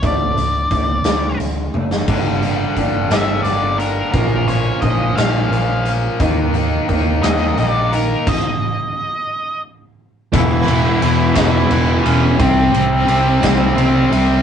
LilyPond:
<<
  \new Staff \with { instrumentName = "Lead electric guitar" } { \time 6/8 \key g \lydian \tempo 4. = 58 d''2 r4 | r4. e''8 d''8 bes'8 | ais'8 cis''8 dis''8 eis''4 r8 | r4. dis''8 d''8 ais'8 |
dis''2 r4 | <e' e''>4. <e' e''>4 <cis' cis''>8 | <c' c''>2~ <c' c''>8 r8 | }
  \new Staff \with { instrumentName = "Clean electric guitar" } { \time 6/8 \key g \lydian <d a d'>8 <d a>8 <d a>8 <d a>8 <d a>8 <d a>8 | <g, d g bes d' g'>8 <g bes d' g'>8 <g bes d' g'>8 <g bes d' g'>8 <g bes d' g'>8 <g bes d' g'>8 | <ais, eis ais cis' eis'>8 <ais cis' eis'>8 <eis ais cis' eis'>8 <ais cis' eis'>8 <eis ais cis' eis'>8 <ais cis' eis'>8 | <dis ais dis' g'>8 <ais dis' g'>8 <dis ais dis' g'>8 <ais dis' g'>8 <dis ais dis' g'>8 <ais dis' g'>8 |
r2. | r2. | r2. | }
  \new Staff \with { instrumentName = "Distorted electric guitar" } { \clef bass \time 6/8 \key g \lydian r2. | <g, d g>8 <g, d g>8 <g, d g>8 <g, d g>8 <g, d g>4 | <ais, eis ais>8 <ais, eis ais>8 <ais, eis ais>8 <ais, eis ais>8 <ais, eis ais>4 | <dis ais dis'>8 <dis ais dis'>8 <dis ais dis'>8 <dis ais dis'>8 <dis ais dis'>4 |
r2. | <e, b, e>8 <e, b, e>8 <e, b, e>8 <e, b, e>8 <e, b, e>8 <e, b, e>8 | <c g c'>8 <c g c'>8 <c g c'>8 <c g c'>8 <c g c'>8 <c g c'>8 | }
  \new Staff \with { instrumentName = "Distorted electric guitar" } { \clef bass \time 6/8 \key g \lydian r2. | r2. | r2. | r2. |
r2. | <e, b, e>8 <e, b, e>8 <e, b, e>8 <e, b, e>8 <e, b, e>8 <e, b, e>8 | <c g c'>8 <c g c'>8 <c g c'>8 <c g c'>8 <c g c'>8 <c g c'>8 | }
  \new Staff \with { instrumentName = "Picked electric bass" } { \clef bass \time 6/8 \key g \lydian d,8 d,8 d,8 d,8 d,8 fis,,8 | g,,4 g,,8 g,,8 g,,4 | ais,,4 ais,,8 ais,,8 ais,,4 | dis,4 dis,8 dis,8 ais,,4 |
r2. | e,,8 e,,8 e,,8 e,,8 e,,8 e,,8 | c,8 c,8 c,8 c,8 c,8 c,8 | }
  \new DrumStaff \with { instrumentName = "Drums" } \drummode { \time 6/8 <hh bd>8 hh8 <hh bd>8 <hh sn>8 hh8 tommh16 sn16 | <cymc bd>8 hh8 <hh bd>8 <hh sn>8 hh8 hh8 | <hh bd>8 hh8 <hh bd>8 <hh sn>8 hh8 hh8 | <hh bd>8 hh8 <hh bd>8 <hh sn>8 hh8 hh8 |
<cymc bd>4. r4. | <cymc bd>8 cymr8 cymr8 <bd cymr sn>8 cymr8 cymr8 | <bd cymr>8 cymr8 cymr8 <bd cymr sn>8 cymr8 cymr8 | }
>>